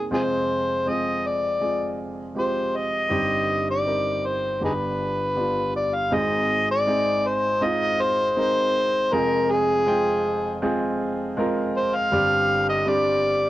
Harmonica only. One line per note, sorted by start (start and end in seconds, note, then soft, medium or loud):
0.14 0.23 F4 medium
0.14 0.21 G#4 medium
0.14 0.90 C5 medium
0.88 1.28 D#5 medium
1.26 2.00 D5 medium
2.38 2.78 C5 medium
2.76 3.69 D#5 medium
3.71 4.28 D5 medium
4.26 4.63 C5 medium
4.64 4.73 D#4 soft
4.64 4.72 G#4 soft
4.64 5.72 B4 medium
5.76 5.96 D5 medium
5.94 6.15 F5 medium
6.14 6.69 D#5 loud
6.71 7.28 D5 medium
7.27 7.66 C5 medium
7.64 8.03 D#5 loud
8.01 9.15 C5 loud
9.13 9.53 A#4 medium
9.51 10.63 G#4 medium
11.76 11.97 C5 medium
11.95 12.68 F5 loud
12.69 12.90 D#5 medium
12.88 13.50 D5 medium